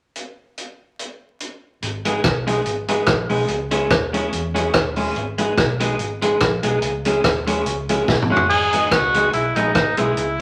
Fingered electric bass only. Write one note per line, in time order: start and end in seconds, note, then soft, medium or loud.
1.82 2.18 G#1 loud
2.24 2.59 B1 medium
2.66 3.01 G#1 medium
3.07 3.27 A#1 medium
3.30 3.46 B1 medium
3.49 3.91 C#2 loud
3.91 4.26 D#2 medium
4.33 4.68 E2 medium
4.74 5.10 D#2 medium
5.16 5.51 G#1 loud
5.58 5.93 B1 medium
5.99 6.35 G#1 medium
6.41 6.60 A#1 medium
6.63 6.80 B1 medium
6.82 7.18 C#2 loud
7.24 7.60 D#2 medium
7.66 8.01 C#2 medium
8.08 8.28 B1 medium
8.30 8.47 F#1 medium
8.50 8.85 G#1 loud
8.91 9.27 C#2 medium
9.33 9.53 B1 medium
9.56 9.72 A#1 medium
9.75 9.94 G#1 medium
9.99 10.14 B1 medium
10.17 10.41 C#2 loud